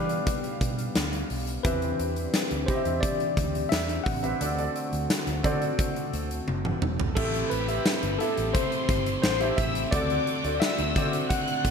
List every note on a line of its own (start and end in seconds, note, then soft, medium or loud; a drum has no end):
0.00 0.18 E3 loud
0.00 1.65 E3 medium
0.00 1.62 G3 medium
0.00 1.62 B3 medium
0.00 1.67 D4 medium
0.00 1.65 G4 medium
0.00 1.65 B4 medium
0.00 1.62 F5 medium
0.00 1.66 F5 loud
0.00 0.91 G5 medium
0.09 closed hi-hat medium
0.27 kick medium
0.27 closed hi-hat medium
0.44 closed hi-hat soft
0.61 0.87 B2 medium
0.61 kick medium
0.61 closed hi-hat medium
0.79 closed hi-hat medium
0.95 1.22 D2 medium
0.95 snare loud
0.95 closed hi-hat medium
1.13 closed hi-hat soft
1.30 1.56 B1 medium
1.30 open hi-hat medium
1.47 closed hi-hat medium
1.63 1.91 E2 loud
1.63 4.38 E3 medium
1.63 2.64 E3 medium
1.63 2.53 C4 medium
1.63 7.12 C4 medium
1.63 4.38 D4 medium
1.63 4.38 G4 medium
1.63 2.53 G4 medium
1.63 2.71 B4 medium
1.63 2.54 B4 medium
1.63 2.54 E5 medium
1.63 kick loud
1.63 closed hi-hat medium
1.82 closed hi-hat soft
2.00 2.25 E2 loud
2.00 closed hi-hat medium
2.16 closed hi-hat medium
2.34 snare loud
2.34 closed hi-hat loud
2.51 2.64 D2 medium
2.51 closed hi-hat medium
2.66 3.86 C4 medium
2.66 3.86 G4 medium
2.66 3.03 C5 medium
2.66 2.75 D#5 medium
2.66 3.86 B5 medium
2.66 kick medium
2.66 closed hi-hat medium
2.75 3.90 E5 medium
2.85 2.99 E2 medium
2.85 closed hi-hat medium
3.01 3.73 D5 loud
3.01 kick loud
3.01 closed hi-hat loud
3.20 closed hi-hat soft
3.37 3.63 D2 medium
3.37 kick medium
3.37 closed hi-hat medium
3.55 closed hi-hat medium
3.69 3.98 E2 medium
3.69 4.06 E5 medium
3.69 snare loud
3.69 closed hi-hat medium
3.89 closed hi-hat medium
4.04 4.32 A1 medium
4.04 6.42 F#5 loud
4.04 kick medium
4.04 open hi-hat medium
4.23 4.38 C4 medium
4.23 4.38 G4 medium
4.23 4.38 B4 medium
4.23 4.38 E5 medium
4.23 closed hi-hat medium
4.40 4.67 D2 loud
4.40 7.14 D3 medium
4.40 5.40 D3 medium
4.40 7.14 A3 medium
4.40 4.55 C4 medium
4.40 4.55 F#4 medium
4.40 7.14 F#4 medium
4.40 4.56 A4 medium
4.40 4.56 D5 medium
4.40 closed hi-hat loud
4.57 5.31 C4 medium
4.57 5.32 F#4 medium
4.57 5.32 A4 medium
4.57 5.32 D5 medium
4.57 closed hi-hat soft
4.76 closed hi-hat medium
4.93 5.06 D2 loud
4.93 closed hi-hat medium
5.10 snare loud
5.10 closed hi-hat loud
5.10 tambourine medium
5.27 5.40 D2 loud
5.27 closed hi-hat medium
5.43 5.70 D3 loud
5.43 6.62 C4 medium
5.43 6.62 F#4 medium
5.43 6.62 A4 medium
5.43 6.63 D5 loud
5.43 kick medium
5.43 closed hi-hat medium
5.62 closed hi-hat medium
5.79 kick loud
5.79 closed hi-hat medium
5.96 closed hi-hat soft
6.13 6.39 D2 medium
6.13 closed hi-hat medium
6.31 closed hi-hat medium
6.48 6.74 F#1 medium
6.48 high tom medium
6.65 mid tom medium
6.82 7.08 E1 medium
6.82 mid tom medium
7.00 floor tom medium
7.15 7.42 A1 loud
7.15 8.52 A2 medium
7.15 8.16 A2 medium
7.15 8.54 E3 medium
7.15 11.71 A3 medium
7.15 7.61 C4 medium
7.15 11.71 C4 medium
7.15 7.61 E4 medium
7.15 9.90 G4 medium
7.15 7.61 G4 medium
7.15 7.51 A4 medium
7.15 7.61 A4 medium
7.15 7.61 E5 medium
7.15 7.48 A5 medium
7.15 kick loud
7.15 crash loud
7.19 8.56 A3 medium
7.34 closed hi-hat soft
7.49 7.77 A1 loud
7.49 8.22 B4 medium
7.49 8.15 B5 medium
7.49 closed hi-hat medium
7.68 8.12 C4 medium
7.68 8.12 E4 medium
7.68 8.13 G4 medium
7.68 8.13 A4 medium
7.68 8.13 E5 medium
7.68 closed hi-hat medium
7.86 snare loud
7.86 tambourine medium
8.03 8.16 G1 loud
8.03 closed hi-hat medium
8.18 8.26 B3 medium
8.18 9.23 E4 medium
8.18 9.24 G4 medium
8.18 8.55 A4 medium
8.18 9.24 A4 medium
8.18 9.24 E5 medium
8.18 8.51 A5 medium
8.18 closed hi-hat medium
8.26 9.27 C4 medium
8.37 8.50 A1 medium
8.37 closed hi-hat medium
8.53 9.22 A2 medium
8.53 9.23 E3 medium
8.53 9.25 A3 medium
8.53 9.21 C5 medium
8.53 9.19 C6 medium
8.53 kick loud
8.53 closed hi-hat loud
8.72 closed hi-hat soft
8.89 9.15 G1 medium
8.89 kick medium
8.89 closed hi-hat medium
9.06 closed hi-hat medium
9.22 9.50 A1 medium
9.22 9.92 A2 medium
9.22 9.91 E3 medium
9.22 9.93 A3 medium
9.22 9.58 C5 medium
9.22 9.55 C6 medium
9.22 snare loud
9.22 tambourine medium
9.40 9.85 C4 medium
9.40 9.85 E4 medium
9.40 9.85 G4 medium
9.40 9.85 A4 medium
9.40 9.85 E5 medium
9.40 closed hi-hat soft
9.56 9.84 A1 loud
9.56 9.93 E5 medium
9.56 9.89 E6 medium
9.56 kick loud
9.56 closed hi-hat medium
9.75 closed hi-hat medium
9.91 10.18 D2 loud
9.91 11.29 D3 medium
9.91 11.71 D3 medium
9.91 10.92 D3 medium
9.91 11.31 A3 medium
9.91 10.37 C4 medium
9.91 10.37 D4 medium
9.91 11.31 D4 medium
9.91 11.71 F#4 medium
9.91 10.37 F#4 medium
9.91 10.37 A4 medium
9.91 10.63 D5 loud
9.91 10.37 D5 medium
9.91 10.57 D6 medium
9.91 kick loud
9.91 closed hi-hat loud
10.10 closed hi-hat soft
10.27 closed hi-hat medium
10.44 10.57 D2 loud
10.44 10.88 C4 medium
10.44 10.88 D4 medium
10.44 10.88 F#4 medium
10.44 10.89 A4 medium
10.44 10.89 D5 medium
10.44 closed hi-hat medium
10.60 11.26 E5 loud
10.60 11.26 E6 medium
10.60 snare loud
10.60 tambourine medium
10.78 10.92 D2 medium
10.78 closed hi-hat medium
10.96 11.22 D3 medium
10.96 11.71 C4 medium
10.96 11.71 D4 medium
10.96 11.71 F#4 medium
10.96 11.71 A4 medium
10.96 11.71 D5 medium
10.96 kick medium
10.96 closed hi-hat medium
11.13 closed hi-hat medium
11.29 11.71 D3 medium
11.29 11.71 A3 medium
11.29 11.71 D4 medium
11.29 11.71 F#5 loud
11.29 11.71 F#6 medium
11.29 kick loud
11.29 closed hi-hat loud
11.48 closed hi-hat soft
11.65 11.71 A2 medium
11.65 kick medium
11.65 closed hi-hat medium